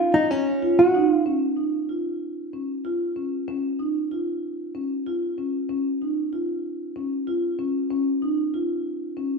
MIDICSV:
0, 0, Header, 1, 3, 480
1, 0, Start_track
1, 0, Key_signature, -5, "major"
1, 0, Tempo, 632244
1, 958, Time_signature, 7, 3, 24, 8
1, 7125, End_track
2, 0, Start_track
2, 0, Title_t, "Hollow-body jazz guitar"
2, 0, Program_c, 0, 26
2, 0, Note_on_c, 0, 65, 83
2, 107, Note_on_c, 0, 63, 79
2, 120, Note_off_c, 0, 65, 0
2, 231, Note_off_c, 0, 63, 0
2, 231, Note_on_c, 0, 61, 89
2, 599, Note_on_c, 0, 66, 72
2, 606, Note_off_c, 0, 61, 0
2, 850, Note_off_c, 0, 66, 0
2, 850, Note_on_c, 0, 65, 72
2, 933, Note_off_c, 0, 65, 0
2, 7125, End_track
3, 0, Start_track
3, 0, Title_t, "Marimba"
3, 0, Program_c, 1, 12
3, 0, Note_on_c, 1, 65, 77
3, 97, Note_off_c, 1, 65, 0
3, 236, Note_on_c, 1, 61, 77
3, 407, Note_off_c, 1, 61, 0
3, 476, Note_on_c, 1, 65, 78
3, 646, Note_off_c, 1, 65, 0
3, 718, Note_on_c, 1, 63, 78
3, 888, Note_off_c, 1, 63, 0
3, 955, Note_on_c, 1, 61, 64
3, 1126, Note_off_c, 1, 61, 0
3, 1189, Note_on_c, 1, 63, 50
3, 1362, Note_off_c, 1, 63, 0
3, 1436, Note_on_c, 1, 65, 53
3, 1776, Note_off_c, 1, 65, 0
3, 1922, Note_on_c, 1, 61, 49
3, 2090, Note_off_c, 1, 61, 0
3, 2163, Note_on_c, 1, 65, 66
3, 2331, Note_off_c, 1, 65, 0
3, 2399, Note_on_c, 1, 61, 49
3, 2568, Note_off_c, 1, 61, 0
3, 2642, Note_on_c, 1, 61, 64
3, 2810, Note_off_c, 1, 61, 0
3, 2880, Note_on_c, 1, 63, 57
3, 3049, Note_off_c, 1, 63, 0
3, 3124, Note_on_c, 1, 65, 58
3, 3461, Note_off_c, 1, 65, 0
3, 3603, Note_on_c, 1, 61, 56
3, 3771, Note_off_c, 1, 61, 0
3, 3846, Note_on_c, 1, 65, 59
3, 4013, Note_off_c, 1, 65, 0
3, 4084, Note_on_c, 1, 61, 57
3, 4252, Note_off_c, 1, 61, 0
3, 4322, Note_on_c, 1, 61, 68
3, 4490, Note_off_c, 1, 61, 0
3, 4568, Note_on_c, 1, 63, 54
3, 4734, Note_off_c, 1, 63, 0
3, 4804, Note_on_c, 1, 65, 53
3, 5142, Note_off_c, 1, 65, 0
3, 5283, Note_on_c, 1, 61, 57
3, 5452, Note_off_c, 1, 61, 0
3, 5523, Note_on_c, 1, 65, 69
3, 5691, Note_off_c, 1, 65, 0
3, 5760, Note_on_c, 1, 61, 60
3, 5930, Note_off_c, 1, 61, 0
3, 6002, Note_on_c, 1, 61, 68
3, 6171, Note_off_c, 1, 61, 0
3, 6242, Note_on_c, 1, 63, 60
3, 6411, Note_off_c, 1, 63, 0
3, 6483, Note_on_c, 1, 65, 61
3, 6821, Note_off_c, 1, 65, 0
3, 6962, Note_on_c, 1, 61, 56
3, 7125, Note_off_c, 1, 61, 0
3, 7125, End_track
0, 0, End_of_file